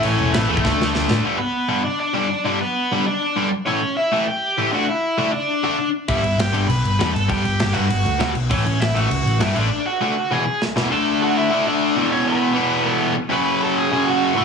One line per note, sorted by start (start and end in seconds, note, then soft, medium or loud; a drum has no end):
0.00 0.14 A1 loud
0.00 0.47 A2 medium
0.00 0.48 E3 medium
0.00 0.47 A3 medium
0.00 0.34 C#5 medium
0.00 crash medium
0.05 0.33 C#4 medium
0.19 0.30 E1 loud
0.33 0.45 A1 loud
0.33 0.48 B3 medium
0.33 0.49 B4 medium
0.33 snare loud
0.33 crash medium
0.48 0.60 E2 medium
0.48 0.63 A2 medium
0.48 0.63 E3 medium
0.48 0.63 A3 medium
0.48 0.92 A3 medium
0.48 0.95 A4 medium
0.57 kick medium
0.63 0.76 D2 medium
0.63 1.23 D3 medium
0.63 1.24 A3 medium
0.63 1.25 D4 loud
0.63 kick loud
0.63 snare medium
0.80 0.91 D2 medium
0.80 snare medium
0.95 1.06 D2 medium
0.95 snare medium
1.09 1.20 A2 medium
1.09 snare loud
1.25 1.37 G2 medium
1.25 1.37 D3 medium
1.25 1.37 G3 loud
1.38 1.81 B3 medium
1.38 1.84 B4 medium
1.68 1.81 G2 medium
1.68 1.82 D3 medium
1.68 1.82 G3 loud
1.84 1.99 D4 medium
1.84 1.99 D5 medium
2.00 2.43 D4 medium
2.00 2.43 D5 medium
2.14 2.27 G2 medium
2.14 2.27 D3 loud
2.14 2.27 G3 loud
2.44 2.58 G2 medium
2.44 2.58 D3 medium
2.44 2.58 G3 loud
2.44 2.60 D4 medium
2.44 2.60 D5 medium
2.61 3.04 B3 medium
2.61 3.07 B4 medium
2.92 3.04 G2 medium
2.92 3.04 D3 medium
2.92 3.04 G3 loud
3.06 3.49 D4 medium
3.06 3.49 D5 medium
3.36 3.48 G2 medium
3.36 3.48 D3 loud
3.36 3.49 G3 loud
3.66 3.79 A2 medium
3.66 3.79 E3 loud
3.66 3.79 A3 loud
3.66 3.95 C#4 medium
3.66 3.96 C#5 medium
3.97 4.25 E4 medium
3.97 4.28 E5 medium
4.12 4.24 A2 medium
4.12 4.24 E3 loud
4.12 4.24 A3 loud
4.28 4.70 G4 medium
4.28 4.70 G5 medium
4.58 4.70 A2 medium
4.58 4.70 E3 loud
4.58 4.70 A3 loud
4.72 4.84 D3 medium
4.72 4.85 A3 loud
4.72 4.85 D4 medium
4.72 4.88 F#4 medium
4.72 4.89 F#5 medium
4.89 5.31 E4 medium
4.89 5.35 E5 medium
5.18 5.30 D3 medium
5.18 5.30 A3 medium
5.18 5.30 D4 loud
5.32 5.89 D4 medium
5.32 5.89 D5 medium
5.63 5.75 D3 medium
5.63 5.76 A3 medium
5.63 5.76 D4 loud
6.08 6.21 G1 medium
6.08 6.21 G2 medium
6.08 6.21 D3 medium
6.08 6.21 G3 loud
6.08 6.37 E4 medium
6.08 6.40 E5 medium
6.08 kick loud
6.08 crash medium
6.23 6.36 G1 medium
6.23 crash medium
6.38 6.51 G1 medium
6.38 6.68 G4 medium
6.38 6.68 G5 medium
6.38 snare loud
6.38 crash medium
6.52 6.66 G1 medium
6.52 6.65 G2 medium
6.52 6.66 D3 medium
6.52 6.66 G3 loud
6.52 crash medium
6.67 6.81 B1 medium
6.67 7.11 B4 medium
6.67 7.14 B5 loud
6.67 crash medium
6.84 6.97 G1 medium
6.84 crash medium
6.99 7.12 E2 medium
6.99 7.11 G2 loud
6.99 7.11 D3 loud
6.99 7.12 G3 loud
6.99 snare loud
6.99 crash medium
7.13 7.28 G1 medium
7.13 7.28 A4 medium
7.13 7.28 A5 medium
7.13 crash medium
7.28 7.42 G1 loud
7.28 7.41 G2 medium
7.28 7.41 D3 medium
7.28 7.41 G3 loud
7.28 7.72 G4 medium
7.28 7.73 G5 medium
7.28 kick loud
7.28 crash medium
7.45 7.58 G1 medium
7.45 crash medium
7.59 7.74 G1 medium
7.59 snare loud
7.59 crash medium
7.73 7.86 G2 loud
7.73 7.88 G2 medium
7.73 7.86 D3 loud
7.73 7.87 G3 loud
7.73 8.31 F#4 medium
7.73 8.31 F#5 loud
7.73 crash medium
7.90 8.03 G1 medium
7.90 crash medium
8.05 8.18 D2 medium
8.05 crash medium
8.19 8.33 D2 medium
8.19 8.32 G2 loud
8.19 8.32 D3 loud
8.19 8.32 G3 loud
8.19 snare loud
8.19 crash medium
8.34 8.47 B1 medium
8.34 crash medium
8.50 8.64 A1 loud
8.50 8.62 A2 medium
8.50 8.63 E3 loud
8.50 8.63 A3 loud
8.50 8.79 C#4 medium
8.50 8.82 C#5 medium
8.50 kick loud
8.50 crash medium
8.65 8.78 A1 medium
8.65 crash medium
8.80 8.93 A1 medium
8.80 8.94 E4 medium
8.80 8.99 E5 medium
8.80 snare loud
8.80 crash medium
8.94 9.08 A1 medium
8.94 9.07 A2 medium
8.94 9.08 E3 medium
8.94 9.08 A3 loud
8.94 9.39 F#4 medium
8.94 crash medium
8.99 9.42 F#5 medium
9.09 9.23 C#2 medium
9.09 crash medium
9.24 9.38 A1 medium
9.24 crash medium
9.39 9.53 G2 medium
9.39 9.53 A2 loud
9.39 9.53 E3 medium
9.39 9.53 A3 loud
9.39 9.56 E4 medium
9.39 snare loud
9.39 crash medium
9.44 9.58 E5 medium
9.55 9.68 A1 medium
9.55 9.68 D3 medium
9.55 9.68 A3 medium
9.55 9.68 D4 medium
9.55 9.85 D4 medium
9.55 9.85 D5 medium
9.55 crash medium
9.86 10.00 F#4 medium
9.86 10.01 F#5 medium
10.01 10.13 D3 medium
10.01 10.13 A3 loud
10.01 10.14 D4 loud
10.01 10.30 F#4 medium
10.01 10.33 F#5 medium
10.31 10.43 E2 medium
10.31 10.43 B2 loud
10.31 10.44 E3 loud
10.31 10.60 G#4 medium
10.31 10.60 G#5 medium
10.62 snare medium
10.76 10.88 E2 medium
10.76 10.89 B2 medium
10.76 10.89 E3 medium
10.76 snare medium
10.90 11.49 D3 loud
10.90 11.51 A3 loud
10.90 11.51 D4 loud
10.90 11.19 A4 medium
10.90 11.20 A5 loud
11.22 11.36 F#4 medium
11.22 11.37 F#5 loud
11.35 11.64 E4 medium
11.35 11.67 E5 loud
11.50 11.95 D3 medium
11.50 11.96 A3 medium
11.50 11.97 D4 loud
11.66 12.08 D4 medium
11.66 12.12 D5 loud
11.96 12.55 E2 medium
11.96 12.55 B2 loud
11.96 12.53 E3 loud
12.11 12.25 C#4 medium
12.11 12.27 C#5 loud
12.27 13.13 B3 medium
12.27 12.89 B4 loud
12.55 13.16 E2 medium
12.55 13.15 B2 medium
12.55 13.15 E3 loud
12.89 13.13 A4 loud
13.29 13.89 F#2 medium
13.29 13.90 C#3 loud
13.29 13.91 F#3 loud
13.29 13.59 B4 medium
13.35 13.64 B5 loud
13.62 13.76 A4 medium
13.62 13.79 A5 loud
13.76 14.04 G#4 medium
13.76 14.08 G#5 loud
13.91 14.35 F#2 medium
13.91 14.35 C#3 medium
13.91 14.36 F#3 loud
14.07 14.45 F#4 medium
14.07 14.45 F#5 loud
14.35 14.45 A2 loud
14.35 14.45 E3 loud
14.35 14.45 A3 loud